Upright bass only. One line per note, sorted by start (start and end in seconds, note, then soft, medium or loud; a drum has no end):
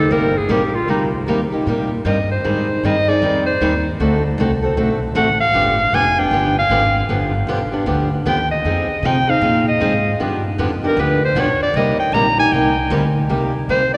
0.11 0.48 G1 medium
0.49 0.87 A#1 medium
0.88 1.26 C2 medium
1.27 1.50 D#2 medium
1.52 muted upright bass stroke soft
1.66 2.04 A#2 medium
2.05 2.43 G2 loud
2.45 2.83 G#2 medium
2.84 3.21 G2 medium
3.22 3.60 F2 medium
3.61 3.99 D#2 medium
4.00 4.37 D2 medium
4.38 4.76 C2 loud
4.77 5.15 B1 medium
5.15 5.53 A1 loud
5.54 5.92 G1 medium
5.92 6.30 F1 medium
6.31 6.69 G1 medium
6.70 7.08 G#1 medium
7.09 7.46 G1 medium
7.47 7.70 B1 medium
7.72 muted upright bass stroke soft
7.86 8.25 D2 medium
8.25 8.64 D#2 medium
8.65 8.87 F2 medium
8.89 muted upright bass stroke soft
9.03 9.41 C3 medium
9.41 9.80 A#2 loud
9.81 10.19 G#2 loud
10.20 10.58 G2 medium
10.58 10.96 F2 medium
10.97 11.34 D2 loud
11.35 11.58 B1 medium
11.60 muted upright bass stroke soft
11.74 11.97 C2 loud
11.98 muted upright bass stroke soft
12.12 12.51 A#1 loud
12.51 12.90 C2 loud
12.90 13.29 D2 loud
13.30 13.68 C2 medium
13.69 13.97 C3 medium